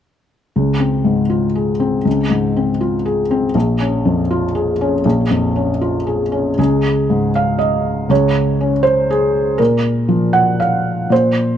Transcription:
0.56 C#2
0.80 C4
1.05 G#2
1.30 F4
1.55 G#4
1.80 C4
2.05 C#2
2.30 G#2
2.57 C4
2.81 F4
3.05 G#4
3.31 C4
3.55 A#1
3.80 C#4
4.05 F2
4.31 F4
4.55 G#4
4.81 C#4
5.05 A#1
5.30 F2
5.56 C#4
5.81 F4
6.07 G#4
6.32 C#4
6.58 C#2 G#4
7.10 G#2
7.35 F5
7.59 D#5
8.09 C#2 C#5
8.61 C#4
8.83 C5
9.10 G#4
9.58 A#2 A#4
10.09 F3
10.33 F#5
10.60 F5
11.10 A#2 C5

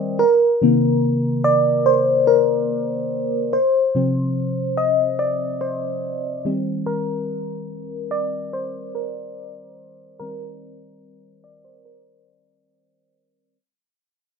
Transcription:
Already playing: D5 D#5
0.19 A#4
0.62 C3 D#3 A#3
1.44 D5
1.86 C5
2.27 A#4
3.53 C5
3.95 C3 F3 C4
4.77 D#5
5.19 D5
5.61 C5
6.45 D#3 G3 C4
6.86 A#4
8.11 D5
8.53 C5
8.95 A#4
10.19 D#3 G3 C4 A#4
11.44 D5
11.64 C5
11.85 A#4

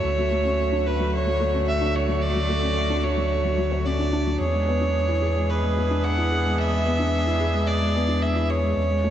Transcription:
Already playing: C#5 E5
0.04 D2 D3 A3 F#4
0.18 F#3
0.31 A3
0.45 C#4
0.72 D4
0.86 F#4 B4
1.00 F#3
1.14 C#5
1.27 F#3
1.40 A3
1.54 C#4
1.67 E5
1.81 D4
1.95 F#4 C#5
2.08 F#3
2.22 D5
2.36 F#3
2.49 A3
2.63 C#4
2.90 D4
3.04 F#4 C#5
3.17 F#3
3.45 F#3
3.58 F#3
3.72 C#5
3.85 C#4 D5
3.99 D4
4.13 D4
4.26 F#3
4.40 E2 E3 B3 D4 G#4 C#5
4.54 G#3
4.67 B3
4.81 D4
5.08 E4
5.22 G#4
5.36 G#3
5.50 B4
5.63 G#3
5.77 B3
5.90 D4
6.04 F#5
6.17 E4
6.31 G#4
6.45 G#3
6.58 E5
6.72 G#3
6.86 B3
6.99 D4
7.27 E4
7.40 G#4
7.54 G#3
7.67 D5
7.81 G#3
7.95 B3
8.08 D4
8.22 E5
8.36 E4
8.49 G#4 C#5
8.63 G#3
8.77 E2 C#4
8.90 G#3
9.04 A3

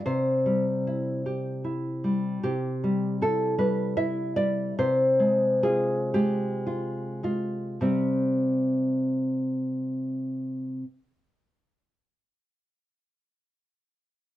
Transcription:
0.05 C3 C5
0.46 G3
0.87 E4
1.26 G4
1.65 E4
2.04 G3
2.44 C3 G4
2.84 G3
3.22 E4 A4
3.58 G3 B4
3.97 E4 E5
4.36 G3 D5
4.78 C3 C5
5.20 G#3
5.63 F4 G#4
6.14 G#3 G4
6.67 F4
7.23 G#3 F4
7.81 C3 G3 C4

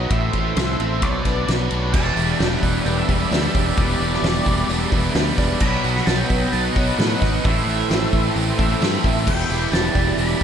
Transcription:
Already playing: F#3 B3 D#4 F#4 D#5
0.10 A1 A2 E3 A4 C5 E5 C6, kick, ride
0.33 A1 E3 E4, kick, ride
0.56 C2 E3 C4, snare, ride
0.80 A1 E3 A3 C4 E5, ride
1.01 B1 B2 F#3 F#4 B4 D5 B5, kick, ride
1.25 B1 B3 D4, kick, snare, ride
1.48 B1 F#3 F#4, snare, ride
1.71 B1 F#3 D4, ride
1.93 E1 E2 B2 G3 G4 D5 E5 A5 B5, kick, crash
1.97 E3
2.17 E1 E3 E4, open hi-hat
2.39 E1 G3 D4 G5, snare, open hi-hat
2.51 F#5
2.63 E1 E3 G3, kick, open hi-hat
2.85 E1 G3 B3 D4 G5, open hi-hat
2.97 E5
3.09 E1 E3 G3 E4, kick, open hi-hat
3.31 D2 G3 B3 D4 E5, snare, open hi-hat
3.44 E5
3.54 E1 G3 D4, kick, open hi-hat
3.76 E1 E2 B2 E3 G3 D5, kick, open hi-hat
4.00 E1 E3 E4, open hi-hat
4.14 snare
4.22 E1 G3 D4, snare, open hi-hat
4.46 E1 E3 G3, kick, open hi-hat
4.69 E1 G3 B3 D4, open hi-hat
4.92 E1 E3 G3 E4, kick, open hi-hat
5.15 D2 G3 B3 D4, snare, open hi-hat
5.38 E1 G3 D4, kick, snare, open hi-hat
5.60 B1 B2 F#3 B3 B4 D#5 B5, kick, crash
5.84 B1 F#3 F#4, open hi-hat
5.96 snare
6.06 B1 F#3 B3 D#4 A5, snare, open hi-hat
6.18 G5
6.30 B1 F#3, kick, open hi-hat
6.53 B1 B3 D#4 A5, open hi-hat
6.63 F#5
6.76 B1 F#3 F#4, kick, open hi-hat
6.98 A2 B3 D#4 F#5, snare, open hi-hat
7.10 F#5
7.21 G#1 B3 D#4, kick, snare, open hi-hat
7.43 A1 A2 E3 A3 A4 C5 E5 C6, kick, open hi-hat
7.67 A1 E3 E4, open hi-hat
7.90 A1 E3 A3 C4, snare, open hi-hat
8.13 A1 E3, kick, open hi-hat
8.36 A1 A3 C4, open hi-hat
8.58 A1 E3 E4 E5, kick, open hi-hat
8.81 G2 A3 C4, snare, open hi-hat
9.03 A1 A3 C4 E4, kick, open hi-hat
9.26 E1 E2 B2 E3 G3 G4 D5 G5 B5, kick, crash
9.49 E1 E3 E4, open hi-hat
9.72 E1 G3 D4 A5, snare, open hi-hat
9.95 E1 E3 G3, kick, open hi-hat
10.17 E1 G3 B3 D4 B5, open hi-hat

